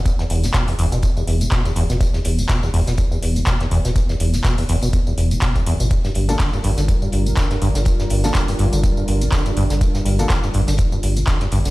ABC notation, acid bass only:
X:1
M:4/4
L:1/16
Q:"Swing 16ths" 1/4=123
K:G
V:1 name="Acid bass" clef=bass
E,, E,, E,, D, B,, E,, E,, B,, E,, E,, E,, D, B,, E,, E,, B,, | E,, E,, E,, D, B,, E,, E,, B,, E,, E,, E,, D, B,, E,, E,, B,, | E,, E,, E,, D, B,, E,, E,, B,, E,, E,, E,, D, B,, E,, E,, B,, | G,, G,, G,, =F, D, G,, G,, D, G,, G,, G,, F, D, G,, G,, D, |
G,, G,, G,, =F, D, G,, G,, D, G,, G,, G,, F, D, G,, G,, D, | G,, G,, G,, =F, D, G,, G,, D, G,, G,, G,, F, D, G,, G,, D, |]